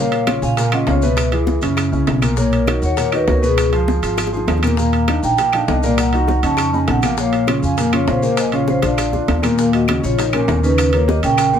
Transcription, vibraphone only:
0.00 0.40 C#5 medium
0.44 0.74 F5 medium
0.74 0.80 D#5 medium
0.89 0.96 C#5 medium
1.04 1.31 B4 medium
2.39 2.85 A#4 medium
2.85 3.15 C#5 medium
3.15 3.29 B4 medium
3.30 3.44 A#4 medium
3.45 3.72 G#4 medium
4.79 5.25 F5 medium
5.24 5.54 G5 medium
5.54 5.67 F5 medium
5.69 5.84 D#5 medium
5.84 5.99 D5 medium
5.99 6.45 F#5 medium
6.45 6.75 A5 medium
6.75 6.81 G#5 medium
6.90 7.05 F#5 medium
7.05 7.11 F5 medium
7.20 7.47 C#5 medium
7.65 7.95 F5 medium
7.95 8.08 C#5 medium
8.10 8.40 C5 medium
8.39 8.53 D#5 medium
8.55 8.69 C#5 medium
8.70 8.84 C5 medium
8.85 9.40 D5 medium
9.59 9.74 F5 medium
9.74 10.02 D#5 medium
10.05 10.32 C#5 medium
10.35 10.65 A#4 medium
10.64 10.94 B4 medium
10.94 11.09 C#5 medium
11.09 11.24 D#5 loud
11.24 11.59 G5 medium

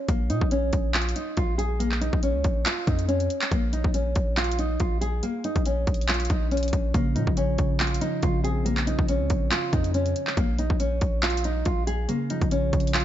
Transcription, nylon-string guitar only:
0.09 0.28 A#3 medium
0.30 0.50 D#4 medium
0.52 0.92 C#4 medium
0.94 1.14 F4 medium
1.16 1.35 D#4 medium
1.37 1.57 F4 medium
1.58 1.78 G#4 medium
1.79 1.99 A#3 medium
2.01 2.21 D#4 medium
2.23 2.63 C#4 medium
2.66 2.85 F4 medium
2.87 3.07 D#4 medium
3.08 3.49 C#4 medium
3.52 3.71 A#3 medium
3.73 3.93 D#4 medium
3.94 4.34 C#4 medium
4.37 4.57 F4 loud
4.59 4.78 D#4 medium
4.80 5.00 F4 medium
5.01 5.21 G#4 medium
5.23 5.42 A#3 medium
5.44 5.64 D#4 medium
5.66 6.06 C#4 medium
6.09 6.28 F4 medium
6.30 6.50 D#4 medium
6.51 6.92 C#4 medium
6.94 7.14 A#3 medium
7.15 7.35 D#4 medium
7.37 7.77 C#4 medium
7.80 8.00 F4 medium
8.01 8.21 D#4 medium
8.23 8.42 F4 medium
8.44 8.64 G#4 medium
8.65 8.85 A#3 medium
8.87 9.07 D#4 medium
9.09 9.49 C#4 medium
9.51 9.71 F4 medium
9.73 9.92 D#4 medium
9.94 10.35 C#4 medium
10.38 10.57 A#3 medium
10.59 10.78 D#4 medium
10.80 11.20 C#4 medium
11.23 11.42 F4 medium
11.45 11.64 D#4 medium
11.66 11.85 F4 medium
11.87 12.07 G#4 medium
12.09 12.28 A#3 medium
12.30 12.50 D#4 medium
12.52 12.92 C#4 medium
12.95 13.05 F4 medium

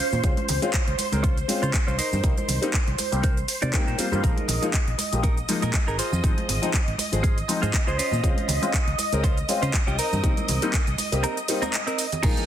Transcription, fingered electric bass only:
0.13 0.20 A#2 medium
0.24 0.32 C#2 medium
0.49 0.58 C#2 medium
0.88 0.98 C#2 medium
0.99 muted fingered electric bass stroke soft
1.13 1.42 C#2 medium
1.63 1.70 C#3 medium
1.88 1.98 C2 medium
1.99 muted fingered electric bass stroke soft
2.13 2.20 G2 medium
2.24 2.32 C2 medium
2.49 2.58 C2 medium
2.88 2.98 C2 medium
2.99 muted fingered electric bass stroke soft
3.12 3.42 C2 medium
3.63 3.70 C3 medium
3.88 3.98 A#2 medium
3.99 muted fingered electric bass stroke soft
4.13 4.20 G2 medium
4.24 4.32 A#1 medium
4.49 4.58 A#1 medium
4.88 4.98 A#1 medium
5.13 5.42 A#1 medium
5.63 5.70 A#2 medium
5.88 5.98 G#1 medium
5.99 muted fingered electric bass stroke soft
6.13 6.20 F2 medium
6.24 6.32 G#1 medium
6.49 6.57 G#1 medium
6.88 6.98 G#1 medium
6.99 muted fingered electric bass stroke soft
7.13 7.42 G#1 medium
7.63 7.70 G#2 medium
7.87 7.98 C#2 medium
7.98 muted fingered electric bass stroke soft
8.12 8.19 A#2 medium
8.24 8.32 C#2 medium
8.48 8.57 C#2 medium
8.87 8.98 C#2 medium
8.98 muted fingered electric bass stroke soft
9.12 9.42 C#2 medium
9.62 9.69 C#3 medium
9.87 9.98 C2 medium
9.99 muted fingered electric bass stroke soft
10.13 10.20 G2 medium
10.24 10.32 C2 loud
10.49 10.57 C2 medium
10.87 10.98 C2 medium
10.99 muted fingered electric bass stroke soft
11.12 11.24 C2 medium
12.24 12.32 A#1 loud

